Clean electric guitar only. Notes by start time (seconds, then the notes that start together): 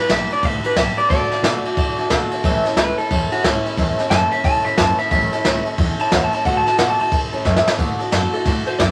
0.11 E5
0.33 D5
0.45 E5
0.66 B4
0.78 E5
0.98 D5
1.10 D5
2.77 B4
2.98 A4
3.32 F#4
3.44 E4
4.10 A5
4.32 E5
4.45 A5
4.64 E5
4.78 A5
4.99 E5
5.11 E5
6.01 A5
6.13 F#5
6.24 A5
6.35 A5
6.46 F#5
6.57 A5
6.68 A5
6.79 F#5
6.90 A5
7.01 A5
8.34 A4
8.67 C5
8.79 D5